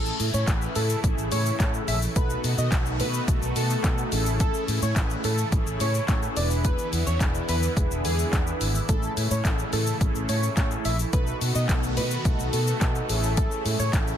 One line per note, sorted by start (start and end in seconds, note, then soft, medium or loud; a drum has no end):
0.00 2.14 C#3 medium
0.00 2.14 E3 medium
0.00 0.26 A3 medium
0.00 6.33 A3 medium
0.00 0.26 C#4 medium
0.00 0.26 E4 medium
0.00 2.14 E4 medium
0.00 0.26 G#4 medium
0.00 0.15 A4 loud
0.00 0.26 A4 medium
0.06 shaker medium
0.20 0.29 A2 loud
0.20 open hi-hat medium
0.20 shaker medium
0.34 0.43 A2 loud
0.34 0.46 C#5 medium
0.34 shaker medium
0.48 0.66 A1 loud
0.48 0.82 A3 medium
0.48 0.82 C#4 medium
0.48 0.82 E4 medium
0.48 0.82 G#4 medium
0.48 0.82 B4 medium
0.48 kick loud
0.48 clap loud
0.48 closed hi-hat medium
0.48 shaker medium
0.62 shaker medium
0.75 0.94 A2 loud
0.75 1.00 A4 medium
0.75 open hi-hat medium
0.75 shaker soft
0.90 shaker medium
1.04 1.13 A1 loud
1.04 1.38 A3 medium
1.04 1.38 C#4 medium
1.04 1.38 E4 medium
1.04 1.38 G#4 medium
1.04 1.38 A4 medium
1.04 kick loud
1.04 closed hi-hat medium
1.04 shaker medium
1.18 1.27 A1 medium
1.18 shaker medium
1.32 1.50 A2 loud
1.32 1.56 C#5 medium
1.32 open hi-hat medium
1.32 shaker medium
1.46 shaker medium
1.60 1.78 A2 loud
1.60 1.94 A3 medium
1.60 1.94 C#4 medium
1.60 1.94 E4 medium
1.60 1.94 G#4 medium
1.60 1.94 A4 loud
1.60 1.72 C#5 medium
1.60 kick loud
1.60 clap loud
1.60 closed hi-hat medium
1.60 shaker medium
1.74 shaker medium
1.88 2.06 A#1 medium
1.88 2.00 E5 medium
1.88 open hi-hat medium
1.88 shaker medium
2.02 shaker medium
2.16 2.34 B1 loud
2.16 4.10 D#3 medium
2.16 2.50 A3 medium
2.16 2.50 B3 medium
2.16 4.10 B3 medium
2.16 2.51 D#4 medium
2.16 4.10 F#4 medium
2.16 2.51 F#4 medium
2.16 2.51 A4 medium
2.16 2.40 B4 loud
2.16 kick loud
2.16 closed hi-hat medium
2.16 shaker medium
2.30 shaker medium
2.44 2.53 B2 loud
2.44 open hi-hat medium
2.44 shaker medium
2.58 2.67 B2 medium
2.58 2.70 D#5 medium
2.58 shaker medium
2.72 3.02 B1 loud
2.72 3.06 A3 medium
2.72 3.06 B3 medium
2.72 3.07 D#4 medium
2.72 3.07 F#4 medium
2.72 3.07 A4 medium
2.72 kick loud
2.72 clap loud
2.72 closed hi-hat medium
2.72 shaker medium
2.86 shaker medium
3.00 3.18 B2 loud
3.00 3.24 B4 medium
3.00 open hi-hat medium
3.00 shaker soft
3.14 shaker medium
3.28 3.37 B1 loud
3.28 3.62 A3 medium
3.28 3.63 B3 medium
3.28 3.63 D#4 medium
3.28 3.63 F#4 medium
3.28 3.63 A4 loud
3.28 kick loud
3.28 closed hi-hat medium
3.28 shaker medium
3.42 3.51 B1 loud
3.42 shaker medium
3.56 3.74 B2 loud
3.56 3.96 A4 medium
3.56 open hi-hat medium
3.56 shaker medium
3.70 shaker medium
3.84 4.02 B2 loud
3.84 4.11 A3 medium
3.84 4.12 B3 medium
3.84 4.12 D#4 medium
3.84 4.12 F#4 medium
3.84 4.11 A4 loud
3.84 kick loud
3.84 clap loud
3.84 closed hi-hat medium
3.84 shaker medium
3.98 shaker medium
4.12 4.49 A1 loud
4.12 6.35 C#3 medium
4.12 11.09 E3 medium
4.12 4.79 A3 loud
4.12 4.80 C#4 medium
4.12 4.80 E4 medium
4.12 11.09 E4 medium
4.12 4.80 G#4 medium
4.12 4.80 A4 loud
4.12 open hi-hat medium
4.12 shaker medium
4.26 shaker medium
4.40 4.64 A4 loud
4.40 kick loud
4.40 closed hi-hat medium
4.40 shaker medium
4.54 shaker medium
4.68 4.77 A2 loud
4.68 open hi-hat medium
4.68 shaker medium
4.82 4.91 A2 loud
4.82 4.94 C#5 medium
4.82 shaker medium
4.96 5.14 A1 loud
4.96 5.31 A3 medium
4.96 5.31 C#4 medium
4.96 5.31 E4 medium
4.96 5.31 G#4 medium
4.96 5.31 B4 medium
4.96 kick loud
4.96 clap loud
4.96 closed hi-hat medium
4.96 shaker medium
5.10 shaker medium
5.24 5.43 A2 loud
5.24 5.48 A4 medium
5.24 open hi-hat medium
5.24 shaker soft
5.38 shaker medium
5.52 5.61 A1 loud
5.52 5.87 A3 medium
5.52 5.87 C#4 medium
5.52 5.87 E4 medium
5.52 5.87 G#4 medium
5.52 5.87 A4 loud
5.52 kick loud
5.52 closed hi-hat medium
5.52 shaker medium
5.67 5.76 A1 medium
5.67 shaker medium
5.80 5.99 A2 loud
5.80 6.04 C#5 medium
5.80 open hi-hat medium
5.80 shaker medium
5.95 shaker medium
6.08 6.27 A2 loud
6.08 6.37 A3 medium
6.08 6.37 C#4 medium
6.08 6.36 E4 medium
6.08 6.36 G#4 medium
6.08 6.37 A4 loud
6.08 6.20 C#5 medium
6.08 kick loud
6.08 clap loud
6.08 closed hi-hat medium
6.08 shaker medium
6.22 shaker medium
6.37 6.73 E1 loud
6.37 8.86 D3 medium
6.37 7.04 B3 medium
6.37 8.87 B3 medium
6.37 7.04 D4 medium
6.37 7.04 E4 medium
6.37 7.04 G#4 medium
6.37 7.04 B4 medium
6.37 6.49 D5 medium
6.37 open hi-hat medium
6.37 shaker medium
6.51 shaker medium
6.65 6.88 B4 loud
6.65 kick loud
6.65 closed hi-hat medium
6.65 shaker medium
6.78 shaker medium
6.93 7.02 E2 loud
6.93 open hi-hat medium
6.93 shaker medium
7.07 7.16 E2 loud
7.07 7.18 C#5 medium
7.07 shaker medium
7.21 7.39 E1 loud
7.21 7.55 B3 medium
7.21 7.55 D4 medium
7.21 7.55 E4 medium
7.21 7.55 G#4 medium
7.21 7.55 B4 medium
7.21 kick loud
7.21 clap loud
7.21 closed hi-hat medium
7.21 shaker medium
7.35 shaker medium
7.49 7.67 E2 loud
7.49 7.73 B4 medium
7.49 open hi-hat medium
7.49 shaker medium
7.63 shaker medium
7.77 7.86 E1 loud
7.77 8.11 B3 medium
7.77 8.11 D4 medium
7.77 8.11 E4 medium
7.77 8.11 G#4 medium
7.77 8.11 B4 medium
7.77 kick loud
7.77 closed hi-hat medium
7.77 shaker medium
7.91 8.00 E1 loud
7.91 shaker medium
8.05 8.23 E2 loud
8.05 8.44 G#4 medium
8.05 open hi-hat medium
8.05 shaker medium
8.19 shaker medium
8.32 8.51 E2 loud
8.32 8.67 B3 medium
8.32 8.67 D4 medium
8.32 8.67 E4 medium
8.32 8.67 G#4 medium
8.32 8.67 B4 loud
8.32 kick loud
8.32 clap loud
8.32 closed hi-hat medium
8.32 shaker medium
8.47 shaker medium
8.61 8.79 G#1 medium
8.61 open hi-hat medium
8.61 shaker medium
8.75 shaker medium
8.89 9.07 A1 loud
8.89 11.11 C#3 medium
8.89 9.23 A3 medium
8.89 11.11 A3 medium
8.89 9.23 C#4 medium
8.89 9.23 E4 medium
8.89 9.23 G#4 medium
8.89 9.13 A4 loud
8.89 9.23 A4 medium
8.89 kick loud
8.89 closed hi-hat medium
8.89 shaker medium
9.03 shaker medium
9.17 9.26 A2 loud
9.17 open hi-hat medium
9.17 shaker medium
9.31 9.40 A2 loud
9.31 9.43 C#5 medium
9.31 shaker medium
9.45 9.63 A1 loud
9.45 9.79 A3 medium
9.45 9.79 C#4 medium
9.45 9.79 E4 medium
9.45 9.80 G#4 medium
9.45 9.80 A4 medium
9.45 kick loud
9.45 clap loud
9.45 closed hi-hat medium
9.45 shaker medium
9.59 shaker medium
9.73 9.91 A2 loud
9.73 9.97 A4 medium
9.73 open hi-hat medium
9.73 shaker medium
9.87 shaker medium
10.01 10.10 A1 loud
10.01 10.35 A3 medium
10.01 10.35 C#4 medium
10.01 10.36 E4 medium
10.01 10.36 G#4 medium
10.01 10.36 A4 medium
10.01 kick loud
10.01 closed hi-hat medium
10.01 shaker medium
10.15 10.24 A1 medium
10.15 shaker medium
10.29 10.47 A2 loud
10.29 10.53 C#5 medium
10.29 open hi-hat medium
10.29 shaker medium
10.43 shaker medium
10.57 10.75 A2 loud
10.57 10.91 A3 medium
10.57 10.91 C#4 medium
10.57 10.91 E4 medium
10.57 10.92 G#4 medium
10.57 10.92 A4 loud
10.57 10.69 C#5 medium
10.57 kick loud
10.57 clap loud
10.57 closed hi-hat medium
10.57 shaker medium
10.71 shaker medium
10.85 11.03 A#1 medium
10.85 10.97 E5 medium
10.85 open hi-hat medium
10.85 shaker medium
10.99 shaker medium
11.13 11.31 B1 loud
11.13 13.08 D#3 medium
11.13 11.48 A3 medium
11.13 14.17 A3 medium
11.13 11.48 B3 medium
11.13 13.08 B3 medium
11.13 11.48 D#4 medium
11.13 13.08 F#4 medium
11.13 11.48 F#4 medium
11.13 11.48 A4 medium
11.13 11.37 B4 loud
11.13 kick loud
11.13 closed hi-hat medium
11.13 shaker medium
11.27 shaker medium
11.41 11.50 B2 loud
11.41 open hi-hat medium
11.41 shaker medium
11.55 11.64 B2 medium
11.55 11.67 D#5 medium
11.55 shaker medium
11.69 11.99 B1 loud
11.69 12.04 A3 medium
11.69 12.04 B3 medium
11.69 12.04 D#4 medium
11.69 12.04 F#4 medium
11.69 12.04 A4 medium
11.69 kick loud
11.69 clap loud
11.69 closed hi-hat medium
11.69 shaker medium
11.83 shaker medium
11.97 12.16 B2 loud
11.97 12.21 B4 medium
11.97 open hi-hat medium
11.97 shaker soft
12.11 shaker medium
12.25 12.34 B1 loud
12.25 12.60 A3 medium
12.25 12.60 B3 medium
12.25 12.60 D#4 medium
12.25 12.60 F#4 medium
12.25 12.60 A4 medium
12.25 kick loud
12.25 closed hi-hat medium
12.25 shaker medium
12.39 12.48 B1 loud
12.39 shaker medium
12.53 12.72 B2 loud
12.53 12.93 A4 medium
12.53 open hi-hat medium
12.53 shaker medium
12.67 shaker medium
12.81 13.00 B2 loud
12.81 13.08 A3 medium
12.81 13.09 B3 medium
12.81 13.09 D#4 medium
12.81 13.09 F#4 medium
12.81 13.08 A4 loud
12.81 kick loud
12.81 clap loud
12.81 closed hi-hat medium
12.81 shaker medium
12.95 shaker medium
13.09 13.46 A1 loud
13.09 14.17 C#3 medium
13.09 14.17 E3 medium
13.09 13.77 A3 loud
13.09 13.77 C#4 medium
13.09 14.17 E4 medium
13.09 13.77 E4 medium
13.09 13.77 G#4 medium
13.09 13.77 A4 loud
13.09 open hi-hat medium
13.09 shaker medium
13.24 shaker medium
13.37 13.61 A4 loud
13.37 kick loud
13.37 closed hi-hat medium
13.37 shaker medium
13.51 shaker medium
13.65 13.75 A2 loud
13.65 open hi-hat medium
13.65 shaker medium
13.79 13.89 A2 loud
13.79 13.91 C#5 medium
13.79 shaker medium
13.93 14.12 A1 loud
13.93 14.17 A3 medium
13.93 14.17 C#4 medium
13.93 14.17 E4 medium
13.93 14.17 G#4 medium
13.93 14.17 A4 medium
13.93 kick loud
13.93 clap loud
13.93 closed hi-hat medium
13.93 shaker medium
14.07 shaker medium